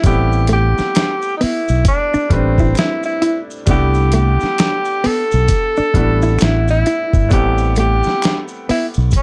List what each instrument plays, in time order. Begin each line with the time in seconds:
0.03 fingered electric bass A1, grand piano G3 A3 B3 C4, tenor saxophone G4, kick, closed hi-hat, maracas
0.08 grand piano E4
0.32 maracas
0.47 hollow-body jazz guitar A3, closed hi-hat, maracas
0.53 tenor saxophone G4
0.78 muted fingered electric bass stroke, snare, maracas
0.95 finger snap, snare, closed hi-hat, maracas
1.22 maracas
1.37 hollow-body jazz guitar B3, tenor saxophone D#4, open hi-hat
1.43 tenor saxophone E4, muted fingered electric bass stroke
1.68 fingered electric bass B1, maracas
1.85 tenor saxophone D4, kick, closed hi-hat, maracas
2.14 hollow-body jazz guitar D4, muted fingered electric bass stroke, maracas
2.29 fingered electric bass A1, grand piano G3 A3 C4 B4, muted hollow-body jazz guitar stroke, kick, closed hi-hat
2.34 tenor saxophone C4, grand piano D4
2.58 hollow-body jazz guitar E4, kick, maracas
2.75 tenor saxophone E4, finger snap, snare, closed hi-hat, maracas
3.03 tenor saxophone E4, maracas
3.22 hollow-body jazz guitar E4, closed hi-hat, maracas
3.51 maracas
3.66 fingered electric bass C2, grand piano G3 A3 B3 D4, kick, closed hi-hat, maracas
3.70 grand piano E4, tenor saxophone G4
3.94 maracas
4.12 hollow-body jazz guitar A3, tenor saxophone G4, closed hi-hat, maracas
4.40 muted fingered electric bass stroke, snare, maracas
4.58 finger snap, snare, closed hi-hat, maracas
4.85 maracas
5.04 hollow-body jazz guitar B3, tenor saxophone A4, muted fingered electric bass stroke, open hi-hat
5.31 fingered electric bass B1, maracas
5.48 kick, closed hi-hat, maracas
5.77 hollow-body jazz guitar D4, muted fingered electric bass stroke, maracas
5.94 fingered electric bass A1, grand piano G3 A3 B3 D4, muted hollow-body jazz guitar stroke, kick, closed hi-hat
5.98 grand piano E4
6.22 hollow-body jazz guitar E4, maracas
6.39 fingered electric bass A1, finger snap, snare, closed hi-hat, maracas
6.44 tenor saxophone E4
6.68 tenor saxophone E4, maracas
6.86 hollow-body jazz guitar E4, closed hi-hat, maracas
7.13 fingered electric bass G1, kick, maracas
7.29 fingered electric bass A1, grand piano G3 A3 B3 C4, kick, closed hi-hat, maracas
7.33 grand piano E4, tenor saxophone G4
7.58 maracas
7.75 hollow-body jazz guitar A3, closed hi-hat, maracas
7.80 tenor saxophone G4
8.03 muted fingered electric bass stroke, snare, maracas
8.22 finger snap, snare, closed hi-hat, maracas
8.48 maracas
8.69 hollow-body jazz guitar B3, tenor saxophone E4, muted fingered electric bass stroke, open hi-hat
8.94 fingered electric bass B1, maracas
9.11 kick, closed hi-hat, maracas
9.17 tenor saxophone D4